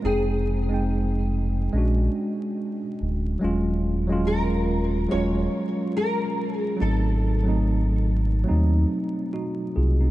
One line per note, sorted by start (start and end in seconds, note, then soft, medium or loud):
0.02 1.69 F1 loud
0.02 0.42 G#3 medium
0.02 0.43 C4 medium
0.02 0.44 D#4 medium
0.02 2.54 G#4 medium
0.07 0.45 G5 medium
0.69 1.31 G#3 medium
0.69 1.32 C4 medium
0.69 1.32 D#4 medium
0.74 1.33 G5 medium
1.73 2.09 A#1 loud
1.73 2.80 G#3 medium
1.73 2.80 C#4 medium
1.73 2.81 D4 medium
1.78 2.82 F#4 medium
3.01 3.36 D1 medium
3.39 5.07 D#1 loud
3.39 3.80 F#3 medium
3.39 3.81 G#3 medium
3.39 3.81 C#4 medium
3.44 3.82 F4 medium
4.07 4.69 F#3 medium
4.07 4.70 G#3 medium
4.07 4.71 C#4 medium
4.12 4.71 F4 medium
4.27 5.11 A#4 medium
5.09 5.48 D#1 medium
5.09 6.17 F#3 medium
5.09 6.17 G#3 medium
5.09 6.18 C#4 medium
5.09 5.96 C#5 loud
5.13 6.19 F4 medium
5.97 6.54 A#4 medium
6.54 6.76 G#4 medium
6.77 7.17 F#3 medium
6.77 7.18 A3 soft
6.77 7.19 C4 medium
6.81 8.45 G#1 loud
6.81 7.20 D#4 medium
6.81 9.30 A4 medium
7.44 8.06 F#3 medium
7.44 8.07 A3 medium
7.44 8.08 C4 medium
7.48 8.09 D#4 medium
8.44 9.53 F#3 medium
8.44 9.54 A3 medium
8.44 9.32 C4 medium
8.49 8.85 D#2 medium
8.49 9.33 D#4 medium
9.33 9.74 D#4 medium
9.33 9.73 F#4 medium
9.76 10.11 C2 medium
9.76 10.00 F4 medium
9.76 9.99 G#4 medium
10.00 10.11 C4 soft
10.00 10.11 D#4 medium